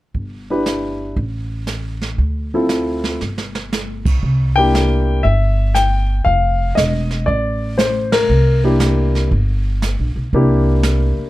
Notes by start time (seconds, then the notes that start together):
0.14 G1, brush sweep, kick
0.50 D4 E4 G4 B4
0.66 snare, hi-hat pedal
1.16 A1, brush sweep, kick
1.67 snare, hi-hat pedal
2.02 snare
2.18 D2, brush sweep, kick
2.54 C4 E4 F4 A4
2.69 snare, hi-hat pedal
3.04 snare
3.21 G1, snare
3.38 snare
3.55 snare
3.73 snare, hi-hat pedal
4.05 B1, kick, crash
4.23 C2, brush sweep, kick
4.56 A#3 D4 E4 G4 G5
4.75 snare, hi-hat pedal
5.23 G1 E5, brush sweep, kick
5.75 G5, snare, hi-hat pedal
6.25 F1 F5, brush sweep, kick
6.75 E1 D#5, snare, hi-hat pedal
7.11 snare
7.26 A1 D5, brush sweep, kick
7.78 C5, snare, hi-hat pedal
8.12 A#4, snare, ride
8.29 C2, brush sweep
8.64 A#3 D4 E4 G4
8.80 snare, hi-hat pedal
9.15 snare
9.31 G1, brush sweep, kick
9.82 snare, hi-hat pedal
9.99 A#1
10.16 B1
10.33 C2 A#3 D4 E4 G4, brush sweep, kick
10.83 snare, hi-hat pedal
11.18 muted upright bass stroke